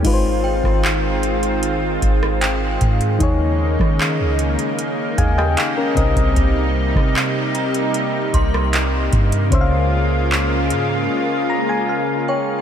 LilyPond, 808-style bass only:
\new Staff \with { instrumentName = "808-style bass" } { \clef bass \time 4/4 \key aes \major \tempo 4 = 76 aes,,8. aes,,4.~ aes,,16 aes,,4 aes,8 | ees,8. ees8 des,8 r8. ees,8 r8 c,8 | c,8. c4.~ c16 c,4 g,8 | des,4. aes,8 r2 | }